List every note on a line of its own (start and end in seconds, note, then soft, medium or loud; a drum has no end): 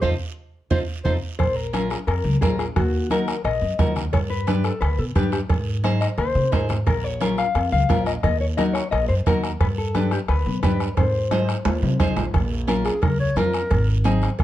0.02 0.15 F2 medium
0.02 0.13 D#4 medium
0.02 0.13 F4 medium
0.02 0.13 A4 medium
0.02 0.10 C5 medium
0.02 bombo low loud
0.02 low conga medium
0.02 long guiro medium
0.70 0.84 F2 medium
0.70 0.82 D#4 loud
0.70 0.82 F4 loud
0.70 0.82 A4 loud
0.70 0.79 C5 medium
0.70 bombo low loud
0.70 low conga medium
0.70 long guiro medium
1.04 1.18 F2 medium
1.04 1.16 D#4 medium
1.04 1.16 F4 medium
1.04 1.16 A4 medium
1.04 1.13 C5 medium
1.04 bombo low medium
1.04 low conga medium
1.04 long guiro medium
1.39 1.94 A#1 medium
1.39 1.56 C5 medium
1.39 bombo low medium
1.39 bombo rim medium
1.39 cowbell loud
1.56 1.90 A#4 medium
1.73 1.97 C#4 medium
1.73 1.97 F4 medium
1.73 1.98 A#4 medium
1.73 bombo rim medium
1.73 cowbell medium
1.73 high conga medium
1.73 short guiro medium
1.90 1.96 G#4 medium
1.90 bombo rim medium
1.90 short guiro medium
2.07 2.21 F2 medium
2.07 2.39 A#4 medium
2.07 bombo rim medium
2.07 cowbell medium
2.07 long guiro medium
2.24 2.38 C#2 loud
2.24 high conga medium
2.41 2.69 A#1 medium
2.41 2.66 C#4 medium
2.41 2.66 F4 medium
2.41 2.57 G#4 medium
2.41 2.66 A#4 medium
2.41 bombo low medium
2.41 bombo rim medium
2.41 cowbell medium
2.41 high conga medium
2.41 low timbale medium
2.41 short guiro medium
2.59 2.64 G#4 medium
2.59 bombo rim medium
2.59 short guiro medium
2.76 3.31 D#2 loud
2.76 3.08 F#4 medium
2.76 bombo low medium
2.76 bombo rim medium
2.76 cowbell loud
2.76 long guiro medium
3.10 3.34 D#4 medium
3.10 3.35 F#4 medium
3.10 3.35 A#4 medium
3.10 3.43 A#4 medium
3.10 bombo rim medium
3.10 cowbell medium
3.10 high conga medium
3.10 short guiro medium
3.28 bombo rim medium
3.28 short guiro medium
3.44 3.58 A#1 medium
3.44 3.93 D#5 loud
3.44 bombo rim medium
3.44 cowbell medium
3.44 long guiro medium
3.62 3.75 F#2 medium
3.79 4.06 D#2 medium
3.79 4.03 D#4 medium
3.79 4.03 F#4 medium
3.79 4.03 A#4 medium
3.79 bombo low medium
3.79 bombo rim medium
3.79 cowbell medium
3.79 high conga medium
3.79 low conga medium
3.79 low timbale medium
3.79 short guiro medium
3.96 bombo rim medium
3.96 low conga medium
3.96 short guiro medium
4.13 4.68 G2 loud
4.13 4.18 C#5 medium
4.13 bombo low medium
4.13 bombo rim medium
4.13 cowbell loud
4.13 long guiro medium
4.30 4.64 B4 loud
4.47 4.71 D4 medium
4.47 4.71 G4 medium
4.47 4.72 B4 medium
4.47 bombo rim medium
4.47 cowbell medium
4.47 high conga medium
4.47 short guiro medium
4.64 4.80 A4 medium
4.64 bombo rim medium
4.64 short guiro medium
4.81 4.95 D2 loud
4.81 4.99 B4 medium
4.81 bombo rim medium
4.81 cowbell medium
4.81 long guiro medium
4.99 5.12 B2 loud
4.99 5.04 A4 medium
5.15 5.43 G2 medium
5.15 5.40 D4 medium
5.15 5.31 G4 medium
5.15 5.40 G4 medium
5.15 5.40 B4 medium
5.15 bombo low medium
5.15 bombo rim medium
5.15 cowbell medium
5.15 high conga medium
5.15 short guiro medium
5.32 5.38 G4 medium
5.32 bombo rim medium
5.32 short guiro medium
5.49 6.05 G#2 medium
5.49 6.01 G#4 medium
5.49 bombo low medium
5.49 bombo rim medium
5.49 cowbell loud
5.49 long guiro medium
5.84 6.08 D#4 medium
5.84 6.08 G#4 medium
5.84 6.08 C5 medium
5.84 bombo rim medium
5.84 cowbell medium
5.84 high conga medium
5.84 short guiro medium
6.01 6.06 D#5 medium
6.01 bombo rim medium
6.01 short guiro medium
6.18 6.32 D#2 medium
6.18 6.66 C5 loud
6.18 bombo rim medium
6.18 cowbell medium
6.18 low conga medium
6.18 long guiro medium
6.35 6.49 C3 loud
6.35 low conga medium
6.52 6.80 G#2 medium
6.52 6.76 D#4 medium
6.52 6.76 G#4 medium
6.52 6.77 C5 medium
6.52 bombo low medium
6.52 bombo rim medium
6.52 cowbell medium
6.52 low conga medium
6.52 low timbale medium
6.52 short guiro medium
6.69 bombo rim medium
6.69 low conga medium
6.69 short guiro medium
6.86 7.42 A#1 loud
6.86 7.04 A#4 medium
6.86 bombo low medium
6.86 bombo rim medium
6.86 cowbell loud
6.86 long guiro medium
7.04 7.38 C#5 medium
7.21 7.45 C#4 medium
7.21 7.45 F4 medium
7.21 7.45 A#4 medium
7.21 bombo rim medium
7.21 cowbell medium
7.21 high conga medium
7.21 short guiro medium
7.38 7.70 F5 loud
7.38 bombo rim medium
7.38 short guiro medium
7.55 7.69 F2 loud
7.55 bombo rim medium
7.55 cowbell medium
7.55 long guiro medium
7.72 7.86 C#2 loud
7.72 8.04 F5 loud
7.72 high conga medium
7.89 8.17 A#1 medium
7.89 8.13 C#4 medium
7.89 8.13 F4 medium
7.89 8.14 A#4 medium
7.89 bombo low medium
7.89 bombo rim medium
7.89 cowbell medium
7.89 high conga medium
7.89 low timbale medium
7.89 short guiro medium
8.06 8.12 D#5 medium
8.06 bombo rim medium
8.06 short guiro medium
8.23 8.78 D#2 loud
8.23 8.40 D#5 loud
8.23 bombo low medium
8.23 bombo rim medium
8.23 cowbell loud
8.23 long guiro medium
8.41 8.46 C#5 medium
8.57 8.82 D#4 medium
8.57 8.82 F#4 medium
8.57 8.82 A#4 medium
8.57 8.62 D#5 loud
8.57 bombo rim medium
8.57 cowbell medium
8.57 high conga medium
8.57 short guiro medium
8.73 8.91 C#5 medium
8.73 bombo rim medium
8.73 short guiro medium
8.91 9.06 A#1 loud
8.91 9.08 D#5 loud
8.91 bombo rim medium
8.91 cowbell medium
8.91 long guiro medium
9.08 9.23 F#2 loud
9.08 9.13 C5 medium
9.26 9.54 D#2 medium
9.26 9.50 D#4 medium
9.26 9.50 F#4 medium
9.26 9.50 A#4 medium
9.26 9.51 A#4 medium
9.26 bombo low medium
9.26 bombo rim medium
9.26 cowbell medium
9.26 high conga medium
9.26 low conga medium
9.26 short guiro medium
9.43 bombo rim medium
9.43 short guiro medium
9.60 10.15 G2 loud
9.60 9.66 B4 loud
9.60 bombo low medium
9.60 bombo rim medium
9.60 cowbell loud
9.60 long guiro medium
9.78 10.12 A4 loud
9.94 10.19 D4 medium
9.94 10.19 G4 medium
9.94 10.19 B4 medium
9.94 bombo rim medium
9.94 cowbell medium
9.94 high conga medium
9.94 short guiro medium
10.11 10.17 G4 medium
10.11 bombo rim medium
10.11 short guiro medium
10.28 10.42 D2 loud
10.28 10.61 B4 medium
10.28 bombo rim medium
10.28 cowbell medium
10.28 long guiro medium
10.46 10.60 B2 loud
10.46 high conga medium
10.63 10.91 G2 medium
10.63 10.87 D4 medium
10.63 10.87 G4 medium
10.63 10.95 B4 medium
10.63 10.87 B4 medium
10.63 bombo low medium
10.63 bombo rim medium
10.63 cowbell medium
10.63 high conga medium
10.63 low timbale medium
10.63 short guiro medium
10.80 bombo rim medium
10.80 short guiro medium
10.97 11.52 G#2 loud
10.97 12.13 C5 medium
10.97 bombo low medium
10.97 bombo rim medium
10.97 cowbell medium
10.97 high timbale medium
10.97 long guiro medium
11.31 11.55 D#4 medium
11.31 11.55 G#4 medium
11.31 11.56 C5 medium
11.31 bombo rim medium
11.31 cowbell medium
11.31 high conga medium
11.31 low timbale medium
11.31 short guiro medium
11.49 bombo rim medium
11.49 short guiro medium
11.65 11.79 D#2 medium
11.65 bombo rim medium
11.65 cowbell medium
11.65 low timbale loud
11.65 long guiro medium
11.82 11.96 C3 loud
11.82 high conga medium
11.82 low timbale medium
12.00 12.15 C2 medium
12.00 12.24 D#4 medium
12.00 12.24 G#4 medium
12.00 12.24 C5 loud
12.00 bombo low medium
12.00 bombo rim medium
12.00 cowbell medium
12.00 high conga medium
12.00 low conga medium
12.00 low timbale medium
12.00 short guiro medium
12.17 12.32 A#1 medium
12.17 bombo rim medium
12.17 low conga medium
12.17 low timbale medium
12.17 short guiro medium
12.34 12.89 A#1 loud
12.34 bombo low medium
12.34 bombo rim medium
12.34 cowbell medium
12.34 low conga medium
12.34 long guiro medium
12.67 12.92 C#4 medium
12.67 12.92 F4 medium
12.67 12.92 A#4 medium
12.67 bombo rim medium
12.67 high conga medium
12.67 short guiro medium
12.85 13.04 G#4 medium
12.85 bombo rim medium
12.85 short guiro medium
13.02 13.30 C#2 medium
13.02 13.19 A#4 medium
13.02 bombo low medium
13.02 bombo rim loud
13.02 cowbell medium
13.02 high conga medium
13.02 low conga medium
13.02 long guiro medium
13.20 13.39 C#5 medium
13.36 13.63 F2 medium
13.36 13.60 C#4 medium
13.36 13.61 F4 medium
13.36 14.03 A#4 medium
13.36 13.61 A#4 medium
13.36 bombo rim medium
13.36 high conga medium
13.36 low timbale medium
13.36 short guiro medium
13.54 bombo rim medium
13.54 short guiro medium
13.70 14.25 G#1 loud
13.70 bombo low medium
13.70 bombo rim medium
13.70 cowbell loud
13.70 low conga medium
13.70 long guiro medium
14.04 14.28 C4 medium
14.04 14.29 D#4 medium
14.04 14.29 G#4 loud
14.04 bombo rim medium
14.04 high conga medium
14.04 short guiro medium
14.22 bombo rim medium
14.22 short guiro medium
14.39 14.44 C2 medium
14.39 bombo low medium
14.39 bombo rim medium
14.39 cowbell medium
14.39 high conga medium
14.39 low conga medium
14.39 long guiro medium